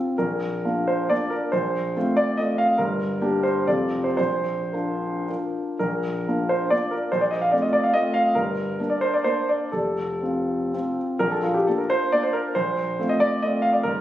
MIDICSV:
0, 0, Header, 1, 2, 480
1, 0, Start_track
1, 0, Key_signature, -2, "major"
1, 0, Tempo, 454201
1, 212, Time_signature, 3, 2, 24, 8
1, 1175, Tempo, 427046
1, 2615, Tempo, 404585
1, 3575, Tempo, 485437
1, 4535, Tempo, 555556
1, 5495, Tempo, 520833
1, 5975, Tempo, 464037
1, 6455, Tempo, 452830
1, 6935, Tempo, 414079
1, 9335, Tempo, 465116
1, 10295, Tempo, 494641
1, 11735, Tempo, 443459
1, 14135, Tempo, 407886
1, 14824, End_track
2, 0, Start_track
2, 0, Title_t, "Grand piano"
2, 0, Program_c, 0, 0
2, 0, Note_on_c, 0, 60, 27
2, 0, Note_on_c, 0, 65, 29
2, 168, Note_off_c, 0, 60, 0
2, 169, Note_off_c, 0, 65, 0
2, 190, Note_on_c, 0, 70, 59
2, 201, Note_on_c, 0, 34, 41
2, 398, Control_c, 0, 64, 127
2, 674, Note_off_c, 0, 34, 0
2, 685, Note_on_c, 0, 62, 33
2, 688, Note_on_c, 0, 58, 33
2, 692, Note_on_c, 0, 65, 42
2, 925, Note_on_c, 0, 72, 56
2, 931, Note_off_c, 0, 70, 0
2, 1128, Note_off_c, 0, 62, 0
2, 1130, Note_off_c, 0, 58, 0
2, 1132, Note_off_c, 0, 65, 0
2, 1158, Note_on_c, 0, 74, 65
2, 1167, Note_off_c, 0, 72, 0
2, 1168, Note_on_c, 0, 58, 32
2, 1169, Note_on_c, 0, 62, 34
2, 1172, Note_on_c, 0, 65, 35
2, 1191, Control_c, 0, 64, 0
2, 1385, Note_on_c, 0, 70, 60
2, 1405, Note_off_c, 0, 74, 0
2, 1600, Note_off_c, 0, 58, 0
2, 1600, Note_off_c, 0, 62, 0
2, 1602, Note_off_c, 0, 65, 0
2, 1633, Note_on_c, 0, 72, 67
2, 1634, Note_off_c, 0, 70, 0
2, 1647, Note_on_c, 0, 34, 45
2, 1881, Control_c, 0, 64, 127
2, 2116, Note_off_c, 0, 34, 0
2, 2133, Note_on_c, 0, 57, 37
2, 2135, Note_on_c, 0, 60, 36
2, 2139, Note_on_c, 0, 65, 41
2, 2141, Control_c, 0, 64, 0
2, 2360, Note_on_c, 0, 74, 71
2, 2371, Note_off_c, 0, 72, 0
2, 2571, Note_off_c, 0, 57, 0
2, 2572, Note_off_c, 0, 60, 0
2, 2574, Note_off_c, 0, 65, 0
2, 2594, Note_on_c, 0, 75, 69
2, 2605, Note_off_c, 0, 74, 0
2, 2607, Note_on_c, 0, 57, 36
2, 2609, Note_on_c, 0, 60, 34
2, 2612, Note_on_c, 0, 65, 36
2, 2839, Note_on_c, 0, 77, 70
2, 2840, Note_off_c, 0, 75, 0
2, 3027, Note_off_c, 0, 57, 0
2, 3028, Note_off_c, 0, 60, 0
2, 3030, Note_off_c, 0, 65, 0
2, 3072, Note_off_c, 0, 77, 0
2, 3073, Note_on_c, 0, 70, 68
2, 3082, Note_on_c, 0, 31, 55
2, 3310, Control_c, 0, 64, 127
2, 3562, Note_off_c, 0, 31, 0
2, 3585, Note_on_c, 0, 58, 43
2, 3590, Note_on_c, 0, 62, 46
2, 3592, Note_on_c, 0, 67, 46
2, 3804, Note_on_c, 0, 72, 67
2, 3806, Note_off_c, 0, 70, 0
2, 4005, Note_off_c, 0, 58, 0
2, 4008, Note_off_c, 0, 62, 0
2, 4009, Note_off_c, 0, 67, 0
2, 4038, Note_off_c, 0, 72, 0
2, 4042, Note_on_c, 0, 74, 62
2, 4048, Control_c, 0, 64, 0
2, 4048, Note_on_c, 0, 60, 37
2, 4052, Note_on_c, 0, 29, 49
2, 4059, Note_on_c, 0, 65, 36
2, 4064, Note_on_c, 0, 69, 38
2, 4229, Control_c, 0, 64, 127
2, 4403, Note_on_c, 0, 72, 57
2, 4406, Note_off_c, 0, 74, 0
2, 4500, Note_off_c, 0, 60, 0
2, 4505, Note_off_c, 0, 65, 0
2, 4508, Note_off_c, 0, 69, 0
2, 4518, Note_off_c, 0, 72, 0
2, 4527, Note_off_c, 0, 29, 0
2, 4533, Note_on_c, 0, 72, 73
2, 4541, Note_on_c, 0, 34, 45
2, 4551, Control_c, 0, 64, 0
2, 4750, Control_c, 0, 64, 127
2, 5007, Note_off_c, 0, 34, 0
2, 5014, Note_on_c, 0, 70, 42
2, 5018, Note_off_c, 0, 72, 0
2, 5022, Note_on_c, 0, 62, 36
2, 5024, Note_on_c, 0, 65, 34
2, 5462, Note_off_c, 0, 62, 0
2, 5463, Note_off_c, 0, 65, 0
2, 5490, Note_off_c, 0, 70, 0
2, 5495, Note_on_c, 0, 62, 29
2, 5504, Note_on_c, 0, 65, 28
2, 5504, Note_on_c, 0, 70, 32
2, 5507, Control_c, 0, 64, 0
2, 5938, Note_off_c, 0, 62, 0
2, 5943, Note_off_c, 0, 65, 0
2, 5943, Note_off_c, 0, 70, 0
2, 5965, Note_on_c, 0, 70, 63
2, 5972, Note_on_c, 0, 34, 42
2, 6188, Control_c, 0, 64, 127
2, 6439, Note_off_c, 0, 34, 0
2, 6465, Note_on_c, 0, 58, 34
2, 6472, Note_on_c, 0, 62, 33
2, 6474, Note_on_c, 0, 65, 37
2, 6693, Note_on_c, 0, 72, 63
2, 6695, Note_off_c, 0, 70, 0
2, 6898, Note_off_c, 0, 58, 0
2, 6901, Note_off_c, 0, 62, 0
2, 6902, Note_off_c, 0, 65, 0
2, 6916, Note_on_c, 0, 74, 71
2, 6927, Note_on_c, 0, 58, 36
2, 6929, Note_on_c, 0, 62, 35
2, 6931, Note_off_c, 0, 72, 0
2, 6932, Note_on_c, 0, 65, 38
2, 6950, Control_c, 0, 64, 0
2, 7151, Note_on_c, 0, 70, 59
2, 7167, Note_off_c, 0, 74, 0
2, 7355, Note_off_c, 0, 58, 0
2, 7356, Note_off_c, 0, 62, 0
2, 7358, Note_off_c, 0, 65, 0
2, 7393, Note_off_c, 0, 70, 0
2, 7393, Note_on_c, 0, 72, 73
2, 7404, Note_on_c, 0, 34, 49
2, 7504, Note_on_c, 0, 74, 60
2, 7513, Note_off_c, 0, 72, 0
2, 7614, Note_on_c, 0, 75, 60
2, 7616, Control_c, 0, 64, 127
2, 7627, Note_off_c, 0, 74, 0
2, 7739, Note_on_c, 0, 77, 64
2, 7743, Note_off_c, 0, 75, 0
2, 7855, Note_on_c, 0, 74, 56
2, 7862, Note_off_c, 0, 34, 0
2, 7869, Note_off_c, 0, 77, 0
2, 7870, Note_on_c, 0, 57, 39
2, 7873, Note_on_c, 0, 60, 37
2, 7878, Note_on_c, 0, 65, 43
2, 7890, Control_c, 0, 64, 0
2, 7978, Note_on_c, 0, 75, 63
2, 7990, Note_off_c, 0, 74, 0
2, 8102, Note_on_c, 0, 74, 72
2, 8111, Note_off_c, 0, 75, 0
2, 8224, Note_on_c, 0, 77, 64
2, 8233, Note_off_c, 0, 74, 0
2, 8314, Note_off_c, 0, 57, 0
2, 8316, Note_off_c, 0, 60, 0
2, 8318, Note_off_c, 0, 65, 0
2, 8342, Note_on_c, 0, 75, 78
2, 8354, Note_off_c, 0, 77, 0
2, 8356, Note_on_c, 0, 57, 42
2, 8362, Note_on_c, 0, 60, 38
2, 8368, Note_on_c, 0, 65, 39
2, 8576, Note_on_c, 0, 77, 82
2, 8592, Note_off_c, 0, 75, 0
2, 8788, Note_off_c, 0, 57, 0
2, 8791, Note_off_c, 0, 60, 0
2, 8794, Note_off_c, 0, 65, 0
2, 8821, Note_on_c, 0, 70, 74
2, 8825, Note_off_c, 0, 77, 0
2, 8833, Note_on_c, 0, 31, 59
2, 9031, Control_c, 0, 64, 127
2, 9318, Note_off_c, 0, 31, 0
2, 9333, Note_off_c, 0, 70, 0
2, 9339, Note_on_c, 0, 62, 34
2, 9342, Note_on_c, 0, 58, 35
2, 9345, Control_c, 0, 64, 0
2, 9349, Note_on_c, 0, 70, 43
2, 9443, Note_on_c, 0, 74, 58
2, 9561, Note_on_c, 0, 72, 73
2, 9565, Note_off_c, 0, 74, 0
2, 9683, Note_off_c, 0, 72, 0
2, 9692, Note_on_c, 0, 74, 61
2, 9767, Note_off_c, 0, 62, 0
2, 9768, Note_off_c, 0, 58, 0
2, 9772, Note_off_c, 0, 70, 0
2, 9801, Note_on_c, 0, 72, 72
2, 9806, Note_on_c, 0, 58, 37
2, 9809, Note_off_c, 0, 74, 0
2, 9815, Note_on_c, 0, 62, 36
2, 9817, Note_on_c, 0, 70, 40
2, 10045, Note_off_c, 0, 72, 0
2, 10056, Note_on_c, 0, 74, 59
2, 10254, Note_off_c, 0, 58, 0
2, 10258, Note_off_c, 0, 62, 0
2, 10259, Note_off_c, 0, 70, 0
2, 10292, Note_on_c, 0, 69, 58
2, 10299, Note_off_c, 0, 74, 0
2, 10303, Note_on_c, 0, 29, 45
2, 10520, Control_c, 0, 64, 127
2, 10774, Note_off_c, 0, 29, 0
2, 10783, Note_on_c, 0, 60, 30
2, 10792, Note_on_c, 0, 65, 36
2, 11236, Note_off_c, 0, 60, 0
2, 11241, Note_off_c, 0, 65, 0
2, 11282, Note_on_c, 0, 60, 33
2, 11285, Note_on_c, 0, 65, 35
2, 11290, Control_c, 0, 64, 0
2, 11512, Note_off_c, 0, 69, 0
2, 11700, Note_off_c, 0, 60, 0
2, 11701, Note_off_c, 0, 65, 0
2, 11722, Note_on_c, 0, 70, 76
2, 11729, Note_on_c, 0, 34, 51
2, 11847, Note_on_c, 0, 69, 51
2, 11848, Note_off_c, 0, 70, 0
2, 11936, Control_c, 0, 64, 127
2, 11973, Note_off_c, 0, 69, 0
2, 11980, Note_on_c, 0, 65, 52
2, 12100, Note_on_c, 0, 67, 53
2, 12103, Note_off_c, 0, 65, 0
2, 12210, Note_off_c, 0, 34, 0
2, 12227, Note_off_c, 0, 67, 0
2, 12235, Note_on_c, 0, 69, 53
2, 12241, Control_c, 0, 64, 0
2, 12248, Note_on_c, 0, 58, 33
2, 12253, Note_on_c, 0, 62, 32
2, 12253, Note_on_c, 0, 65, 41
2, 12355, Note_on_c, 0, 70, 54
2, 12357, Note_off_c, 0, 69, 0
2, 12477, Note_off_c, 0, 70, 0
2, 12483, Note_on_c, 0, 72, 78
2, 12682, Note_off_c, 0, 58, 0
2, 12685, Note_off_c, 0, 62, 0
2, 12685, Note_off_c, 0, 65, 0
2, 12719, Note_off_c, 0, 72, 0
2, 12728, Note_on_c, 0, 74, 78
2, 12738, Note_on_c, 0, 58, 35
2, 12742, Note_on_c, 0, 62, 38
2, 12747, Note_on_c, 0, 65, 38
2, 12839, Note_off_c, 0, 74, 0
2, 12844, Note_on_c, 0, 72, 62
2, 12951, Note_on_c, 0, 70, 70
2, 12955, Note_off_c, 0, 72, 0
2, 13147, Note_off_c, 0, 58, 0
2, 13149, Note_off_c, 0, 62, 0
2, 13152, Note_off_c, 0, 65, 0
2, 13180, Note_off_c, 0, 70, 0
2, 13189, Note_on_c, 0, 72, 80
2, 13200, Note_on_c, 0, 34, 51
2, 13395, Control_c, 0, 64, 127
2, 13652, Note_off_c, 0, 34, 0
2, 13665, Note_on_c, 0, 57, 42
2, 13667, Control_c, 0, 64, 0
2, 13670, Note_on_c, 0, 60, 37
2, 13673, Note_on_c, 0, 65, 44
2, 13777, Note_on_c, 0, 75, 66
2, 13784, Note_off_c, 0, 72, 0
2, 13894, Note_on_c, 0, 74, 80
2, 13900, Note_off_c, 0, 75, 0
2, 14098, Note_off_c, 0, 57, 0
2, 14100, Note_off_c, 0, 60, 0
2, 14102, Note_off_c, 0, 65, 0
2, 14133, Note_off_c, 0, 74, 0
2, 14136, Note_on_c, 0, 75, 77
2, 14147, Note_on_c, 0, 57, 40
2, 14148, Note_on_c, 0, 60, 41
2, 14154, Note_on_c, 0, 65, 48
2, 14365, Note_on_c, 0, 77, 74
2, 14382, Note_off_c, 0, 75, 0
2, 14493, Note_off_c, 0, 77, 0
2, 14495, Note_on_c, 0, 74, 63
2, 14577, Note_off_c, 0, 57, 0
2, 14578, Note_off_c, 0, 60, 0
2, 14581, Note_off_c, 0, 65, 0
2, 14616, Note_off_c, 0, 74, 0
2, 14618, Note_on_c, 0, 70, 82
2, 14630, Note_on_c, 0, 31, 51
2, 14802, Control_c, 0, 64, 127
2, 14824, Note_off_c, 0, 31, 0
2, 14824, Note_off_c, 0, 70, 0
2, 14824, End_track
0, 0, End_of_file